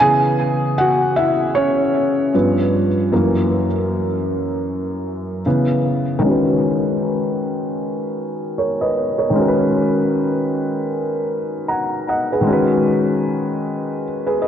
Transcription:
0.00 C#3 E3 B3 G#4 G#5
0.78 F#4 F#5
1.16 E4 E5
1.55 C#4 C#5
2.34 G2 F3 B3
3.12 F#2 E3 A#3
5.46 C#3 E3 B3
6.19 D#3 G#3
6.25 C#4 F#4
6.30 B4
8.58 A#4 C#5
8.81 B4 D#5
9.18 A#4 C#5
9.30 D#3 G#3
9.36 C#4 F#4
9.42 A#4
9.48 B4
11.68 F#5 A#5
12.09 D#5 F#5
12.32 G#4 B4
12.41 D#3 G#3
12.47 C#4 F#4
12.52 B4
14.27 G#4 B4
14.42 B4 D#5

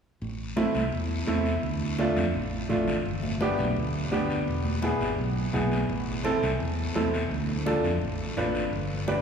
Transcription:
0.21 A1, high conga, long guiro
0.56 A3 C4 E4, high conga, short guiro
0.74 C2, high conga, short guiro
0.92 E2, long guiro
1.10 high conga
1.27 E2 A3 C4 E4, high conga, short guiro
1.45 short guiro
1.63 D2, high conga, long guiro
1.98 A3 D4 F4, high conga, short guiro
2.16 F2, high conga, short guiro
2.34 A1, long guiro
2.52 high conga
2.69 A1 A3 D4 F4, high conga, low conga, short guiro
2.87 low conga, short guiro
3.05 G1, high conga, long guiro
3.23 high conga
3.41 B3 D4 G4, high conga, short guiro
3.58 B1, high conga, short guiro
3.77 D2, long guiro
3.94 high conga
4.11 D2 B3 D4 G4, high conga, short guiro
4.30 short guiro
4.47 E1, high conga, long guiro
4.65 high conga
4.82 B3 E4 G#4, high conga, short guiro
5.01 G#1, short guiro
5.18 B1, long guiro
5.36 high conga
5.53 B1 B3 E4 G#4, high conga, low conga, short guiro
5.72 short guiro
5.89 A1, high conga, long guiro
6.24 C4 E4 A4, high conga, short guiro
6.42 C2, short guiro
6.60 E2, long guiro
6.78 high conga
6.95 E2 C4 E4 A4, high conga, short guiro
7.14 short guiro
7.31 D2, high conga, long guiro
7.49 high conga
7.66 D4 F4 A4, high conga, short guiro
7.84 F2, short guiro
8.02 A1, long guiro
8.19 high conga
8.37 A1 D4 F4 B4, high conga, low conga, short guiro
8.55 short guiro
8.72 G1, high conga, long guiro
9.07 D4 G4 B4, high conga, short guiro

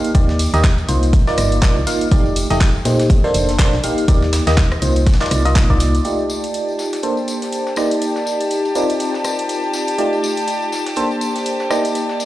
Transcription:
Already playing: A#3 D#4 G4 F5
0.04 closed hi-hat, tambourine
0.15 D#2 A#3 D#4 G4 D5, kick, closed hi-hat, tambourine
0.29 snare, tambourine
0.39 open hi-hat, tambourine
0.53 D#2 A#3 D#4 G4 D#5, closed hi-hat, tambourine
0.64 kick, snare, clap, closed hi-hat
0.78 closed hi-hat, tambourine
0.89 C2 A#3 D#4 F4 C5, closed hi-hat, open hi-hat, tambourine
1.03 closed hi-hat, tambourine
1.13 kick, closed hi-hat, tambourine
1.27 A#3 D#4 F4 D5, snare, tambourine
1.38 G1, cross-stick, closed hi-hat, open hi-hat, tambourine
1.52 closed hi-hat, tambourine
1.62 A#3 D#4 F4 D5, kick, snare, clap, closed hi-hat, tambourine
1.76 C2, tambourine
1.87 A#3 D#4 F4 F5, snare, closed hi-hat, open hi-hat, tambourine
2.01 closed hi-hat, tambourine
2.11 F1 A3 D#4 G4 D5, kick, closed hi-hat, tambourine
2.26 tambourine
2.36 closed hi-hat, open hi-hat, tambourine
2.50 F1 A3 D#4 G4 D#5, closed hi-hat, tambourine
2.61 kick, snare, clap, closed hi-hat, tambourine
2.75 tambourine
2.85 A#2 A3 D#4 G4 C5, snare, closed hi-hat, open hi-hat, tambourine
2.99 snare, closed hi-hat, tambourine
3.10 kick, closed hi-hat, tambourine
3.24 A#3 D4 A4 C5, tambourine
3.34 F1, closed hi-hat, open hi-hat, tambourine
3.49 snare, closed hi-hat, tambourine
3.59 A#3 D4 A4 C5, kick, snare, clap, closed hi-hat, tambourine
3.73 A#1, snare, tambourine
3.83 A#3 D#4 G4 F5, closed hi-hat, open hi-hat, tambourine
3.98 closed hi-hat, tambourine
4.08 D#2 A#3 D#4 G4 D5, kick, closed hi-hat, tambourine
4.22 snare, tambourine
4.33 snare, closed hi-hat, open hi-hat, tambourine
4.47 D#2 A#3 D#4 G4 D#5, snare, closed hi-hat, tambourine
4.57 kick, snare, clap, closed hi-hat, tambourine
4.72 cross-stick, closed hi-hat, tambourine
4.82 C2 A#3 D#4 F4 C5, closed hi-hat, open hi-hat, tambourine
4.96 closed hi-hat, tambourine
5.07 kick, snare, closed hi-hat, tambourine
5.14 snare, closed hi-hat
5.21 A#3 D#4 F4 D5, snare, clap, closed hi-hat, tambourine
5.26 snare, closed hi-hat
5.31 C2, cross-stick, closed hi-hat, open hi-hat, tambourine
5.45 A#3 D#4 F4 D#5, closed hi-hat, tambourine
5.55 kick, snare, clap, closed hi-hat, tambourine
5.70 C2 A#3 D#4 F4 D5, kick, tambourine
5.80 snare, closed hi-hat, open hi-hat, tambourine
5.95 closed hi-hat, tambourine
6.05 A3 D#4 F4 G4 D5 A5, closed hi-hat, tambourine
6.19 tambourine
6.30 closed hi-hat, tambourine
6.44 closed hi-hat, tambourine
6.54 closed hi-hat, tambourine
6.68 tambourine
6.79 snare, closed hi-hat, tambourine
6.93 snare, closed hi-hat, tambourine
7.03 A#3 D4 A4 C5, closed hi-hat, tambourine
7.17 tambourine
7.28 closed hi-hat, tambourine
7.42 snare, closed hi-hat, tambourine
7.52 closed hi-hat, tambourine
7.67 snare, tambourine
7.76 A#3 D#4 G4 D5, cross-stick, snare, closed hi-hat, tambourine
7.91 closed hi-hat, tambourine
8.02 closed hi-hat, tambourine
8.16 snare, tambourine
8.26 open hi-hat, tambourine
8.41 closed hi-hat, tambourine
8.50 closed hi-hat, tambourine
8.65 closed hi-hat, tambourine
8.75 C4 D#4 F4 A#4 D5, closed hi-hat, tambourine
8.90 closed hi-hat, tambourine
9.00 closed hi-hat, tambourine
9.14 snare, tambourine
9.24 cross-stick, closed hi-hat, tambourine
9.39 closed hi-hat, tambourine
9.49 closed hi-hat, tambourine
9.63 tambourine
9.73 snare, closed hi-hat, tambourine
9.87 closed hi-hat, tambourine
9.98 A3 D#4 F4 G4 D5, closed hi-hat, tambourine
10.13 tambourine
10.23 closed hi-hat, tambourine
10.37 closed hi-hat, tambourine
10.48 closed hi-hat, tambourine
10.62 tambourine
10.72 snare, closed hi-hat, tambourine
10.86 snare, closed hi-hat, tambourine
10.96 A#3 D4 A4 C5, closed hi-hat, tambourine
11.11 tambourine
11.21 closed hi-hat, tambourine
11.36 snare, closed hi-hat, tambourine
11.46 closed hi-hat, tambourine
11.60 snare, tambourine
11.71 A#3 D#4 G4 D5, cross-stick, snare, closed hi-hat, tambourine
11.85 closed hi-hat, tambourine
11.95 closed hi-hat, tambourine
12.09 snare, tambourine
12.20 open hi-hat, tambourine

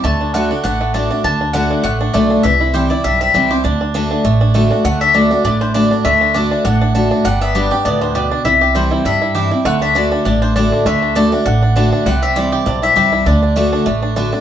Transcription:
0.04 D2 D3 A3 A5
0.21 D4
0.34 D3 A3 D4 F#4 F#5
0.51 D4 F#4
0.64 A1 A2 D4 F#5
0.81 A3
0.94 D3 A3 D4 F#4 D5
1.11 D4 F#4
1.24 D2 D3 D4 A5
1.41 D4
1.53 D3 A3 D4 F#4 F#5
1.71 D4
1.84 A1 A2 A3 F#5
2.01 D4
2.14 B1 D3 A3 D4 F#4 D5
2.30 D4
2.43 C2 C3 E3 E5
2.61 E4
2.74 E3 G3 C4 E4 G4 C5
2.90 C4 E4 D5
3.04 B1 G2 G3 E5
3.21 C4 E5
3.34 C2 E3 G3 C4 E4
3.51 C4 E4 G4 C5
3.64 D2 D3 D4 D5
3.81 D4
3.94 D3 A3 D4 F#4
4.11 D4
4.24 A1 A2 A3
4.41 D4
4.54 D3 A3 D4 F#4
4.71 D4 F#4
4.84 D2 D3 A3 F#5
5.01 D4 E5
5.14 D3 A3 D4 F#4 D5
5.31 D4 F#4
5.44 A1 A2 D4 D5
5.61 D4 C5
5.74 D3 A3 D4 F#4 D5
5.91 D4 F#4
6.04 D2 D3 A3 E5
6.21 D4
6.34 D3 A3 D4 F#4 D5
6.51 D4
6.65 A1 A2 D4 F#5
6.81 D4
6.95 D3 A3 D4 F#4
7.11 D4
7.25 G1 G2 G3 F#5
7.41 B3 E5
7.55 G3 B3 D4 G4 D5
7.71 D4 G4
7.85 D2 A2 B3 D5
8.01 D4 C5
8.15 B2 G4 D5
8.31 D4
8.45 C2 C3 E4 E5
8.61 G4
8.75 E3 G3 C4 E4 C5
8.91 E4
9.05 G2 G3 E5
9.22 E4
9.35 E3 G3 C4 E4 G4
9.51 C4 E4
9.65 D2 D3 A3 F#5
9.81 D4 E5
9.95 D3 A3 D4 F#4 D5
10.12 D4
10.25 A1 A2 D4 D5
10.42 D4 C5
10.56 D3 A3 D4 F#4 D5
10.72 D4
10.85 D2 D3 A3 E5
11.02 D4
11.15 D3 A3 D4 F#4 D5
11.32 D4 F#4
11.46 A1 A2 D4 F#5
11.62 D4
11.76 D3 A3 D4 F#4
11.92 D4
12.06 C2 C3 G3 F#5
12.22 C4 E5
12.36 E3 G3 C4 E4 D5
12.52 G4
12.66 B1 G2 C4 D5
12.82 E4 E5
12.96 C2 E3 G3 C4 E4 G4
13.13 E4
13.26 D2 D3 D4 D5
13.43 D4
13.56 D3 A3 D4 F#4
13.73 D4
13.86 A1 A2 A3
14.02 D4
14.16 D3 A3 D4 F#4
14.32 D4 F#4

